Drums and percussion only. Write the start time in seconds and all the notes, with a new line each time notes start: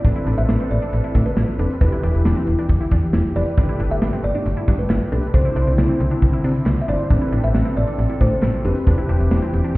0.05 kick, closed hi-hat
0.27 closed hi-hat
0.37 closed hi-hat
0.49 snare
0.71 closed hi-hat
0.82 closed hi-hat
0.93 closed hi-hat
1.15 kick, closed hi-hat
1.26 closed hi-hat
1.37 snare
1.59 closed hi-hat
1.70 closed hi-hat
1.81 kick, closed hi-hat
2.03 closed hi-hat
2.14 closed hi-hat
2.25 snare
2.47 closed hi-hat
2.59 closed hi-hat
2.69 kick, closed hi-hat
2.91 kick, closed hi-hat
3.02 closed hi-hat
3.13 snare
3.36 open hi-hat
3.47 closed hi-hat
3.58 kick, closed hi-hat
3.80 closed hi-hat
3.91 closed hi-hat
4.02 snare
4.24 closed hi-hat
4.35 closed hi-hat
4.46 closed hi-hat
4.68 kick, closed hi-hat
4.79 closed hi-hat
4.90 snare, clap
5.12 closed hi-hat
5.23 closed hi-hat
5.34 kick, closed hi-hat
5.56 closed hi-hat
5.67 closed hi-hat
5.78 snare
6.00 closed hi-hat
6.12 closed hi-hat
6.22 kick, closed hi-hat
6.44 closed hi-hat
6.55 closed hi-hat
6.66 snare, clap
6.88 closed hi-hat
7.00 closed hi-hat
7.10 kick, closed hi-hat
7.33 closed hi-hat
7.43 closed hi-hat
7.55 snare
7.77 closed hi-hat
7.88 closed hi-hat
7.98 closed hi-hat
8.21 kick, closed hi-hat
8.32 closed hi-hat
8.43 snare, clap
8.65 closed hi-hat
8.76 closed hi-hat
8.87 kick, closed hi-hat
9.09 closed hi-hat
9.20 closed hi-hat
9.31 snare
9.53 closed hi-hat
9.64 closed hi-hat